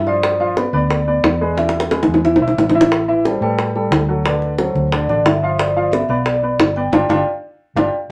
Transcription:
Already playing: G2
0.07 F3 F4 D5 F5
0.23 high bongo
0.40 F3 F4 C5 F5
0.57 B3 B4 D5, high bongo
0.73 D2 B3 B4 D5
0.90 high bongo
1.07 B3 B4 D5
1.23 E2, high bongo, low bongo
1.41 G#3 G#4 B4
1.57 E3 E4 E5, high bongo
1.69 high bongo
1.80 high bongo
1.91 G#3 G#4 B4, high bongo
2.03 low bongo
2.07 E2
2.14 low bongo
2.25 E3 E4 E5, low bongo
2.36 low bongo
2.41 B1 E3 E4 E5
2.48 low bongo
2.58 A1, low bongo
2.70 low bongo
2.75 E3 E4 E5
2.81 low bongo
2.92 high bongo
3.08 E3 E4 B4 E5
3.25 G3 G4 A4 C5, high bongo
3.41 A2 G3 G4 A4 B4
3.59 high bongo
3.76 G3 G4 A4
3.91 D2, high bongo, low bongo
4.08 F#3 F#4 A4
4.25 D3 D4 B4 D5, high bongo
4.42 high bongo
4.58 F#3 F#4 A4 C5, high bongo
4.75 D2, high bongo
4.92 D3 D4 D5, high bongo
5.08 A1 D3 D4 D5, high bongo
5.25 G1 E5, high bongo, low bongo
5.43 F3 F4 F5
5.59 D5, high bongo
5.76 F3 F4 F5
5.92 B3 B4 D5 E5, high bongo
6.09 B1 B3 B4 D5 F5
6.26 D5, high bongo
6.43 B3 B4 D5
6.59 G1, high bongo, low bongo
6.76 B3 B4 D5 G5
6.92 G1 D4 F4 G4 D5 F5 G5, low bongo
7.09 G1 D4 F4 G4 D5 F5 G5, low bongo
7.75 G1 D4 F4 G4 D5 F5 G5, low bongo

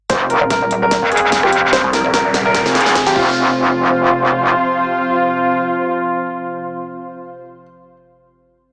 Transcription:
0.10 F1 C3 F3 C4 C5, kick, snare, closed hi-hat, riser
0.30 A#4, closed hi-hat
0.41 D#1 F3 C4 F4
0.50 A#4, kick, snare, closed hi-hat
0.71 closed hi-hat
0.82 A#4
0.91 kick, snare, closed hi-hat
1.02 F2
1.12 G#4, cross-stick, closed hi-hat
1.17 closed hi-hat
1.32 kick, snare, closed hi-hat
1.43 F3 C4 F4 G4, cross-stick
1.52 closed hi-hat
1.73 C5, kick, snare, closed hi-hat
1.84 C2
1.93 A#4, snare, closed hi-hat
2.05 D#1 F3 C4 F4
2.14 A#4, kick, snare, closed hi-hat
2.34 snare, closed hi-hat
2.45 A#4
2.55 kick, snare, closed hi-hat
2.66 F1, snare
2.75 G#4, snare, closed hi-hat
2.81 closed hi-hat
2.86 snare
2.95 kick, snare, closed hi-hat
3.07 G#1 F3 C4 F4 G4, snare
3.16 F1 C3 F3 C4 F4 C5, kick

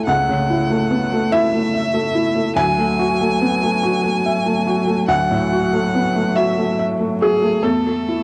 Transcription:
Already playing: A3 B3 E4 E5 G#5
0.05 C#2 F#5
0.29 C#3
0.50 E4
0.70 A3
0.91 B3
1.12 A3
1.32 E4 E5
1.53 A3
1.74 E5
1.94 A3
2.15 E4
2.35 A3
2.56 D2 F#3 G#5
2.78 A3
2.99 F#4
3.21 A3
3.41 B3
3.63 A3
3.83 F#4
4.03 A3
4.26 E5
4.46 A3
4.67 F#4
4.87 A3
5.08 D2 F#5
5.31 A2
5.53 F#4
5.73 A3
5.95 B3
6.15 A3
6.36 F#4 E5
6.58 A3
6.79 E5
6.99 A3
7.21 F#4 G#4
7.42 A3
7.63 E2 A3 A4
7.86 A3
8.09 E4

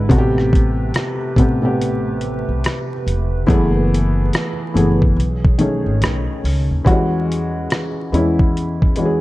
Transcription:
Already playing: D3 G#3 B3 E4 B4
0.09 A1 C3 A3 B3 F#4 G4, kick, closed hi-hat
0.18 G4
0.38 cross-stick
0.53 kick, closed hi-hat
0.94 cross-stick, closed hi-hat
1.36 A1 C3 A3 B3 G4, kick, closed hi-hat
1.62 C3 A3 B3 G4
1.81 closed hi-hat
2.21 closed hi-hat
2.49 B1
2.64 cross-stick, closed hi-hat
3.07 E1, closed hi-hat
3.47 F#1 E3 A3 B3 G#4, kick, closed hi-hat
3.94 closed hi-hat
4.33 cross-stick, closed hi-hat
4.74 F#1 E3 A3 B3 G#4, closed hi-hat
5.02 kick
5.16 B1 D#3 G#4 C#5, closed hi-hat
5.44 kick
5.58 D#3 A3 C#4 G#4, closed hi-hat
5.86 G#1
6.02 B1, cross-stick, closed hi-hat
6.44 C#2, open hi-hat
6.71 D#2
6.85 E2 E3 G3 C#4 F#4, kick, closed hi-hat
6.92 G#3
7.32 closed hi-hat
7.70 cross-stick, closed hi-hat
8.12 E2 E3 G#3 C#4 E4, closed hi-hat
8.39 kick
8.57 closed hi-hat
8.82 kick
8.96 E3 G#3 C#4 F#4, closed hi-hat
9.05 G#4

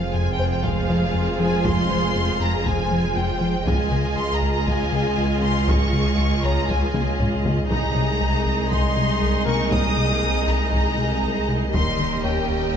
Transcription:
Already playing: F1 F2 G#3 F4 G#4 C5 F5
0.14 F2 G#5
0.32 G5
0.39 F2 C5
0.49 G5
0.64 F2 F5, taiko
0.90 F3
1.14 F2
1.40 F3 G#4 G#5
1.65 F2 C6, taiko
1.91 F3
2.16 F2
2.40 F2 A#5
2.66 F2 G#5, taiko
2.91 F3
3.16 F2 G5
3.41 F3
3.66 C#2 G#3 F4 G#4 D#5 G#5, taiko
3.92 C#3
4.17 C#2 C6
4.35 A#5
4.42 C#2
4.52 A#5
4.67 C#2 G#5, taiko
4.92 C#3 G#4
5.18 C#2
5.43 C#3 C6
5.68 C#2 C#6, taiko
5.93 C#3
6.18 C#2
6.44 C#2 C#5 A#5
6.68 C#2 G#5, taiko
6.94 C#3, taiko high
7.19 C#2, taiko low-mid
7.45 C#3, taiko low
7.70 C2 G#3 D#4 G#4 D#5 A#5, taiko
7.96 C3
8.21 C2
8.46 C2
8.71 C2 C6, taiko
8.97 C3
9.22 C2
9.45 C3 A#3 A#4 C#6
9.72 C2 D#6, taiko
9.97 C3
10.23 C2
10.47 C2 A#5
10.72 C2 A#5, taiko
10.97 C3
11.23 C2
11.49 C3
11.73 D#1 D#2 G3 G4 A#4 D#5 C6, taiko
11.99 D#3
12.23 D#2 C#4 C#5 G5
12.50 D#2

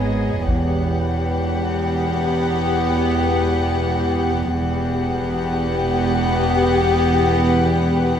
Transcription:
Already playing: G#1 G#2 B3 G#4 B4 C#5 D#5
0.46 E1 E2 B3 G4 F#5, taiko
4.47 E1 E2 B3 G4 F#5

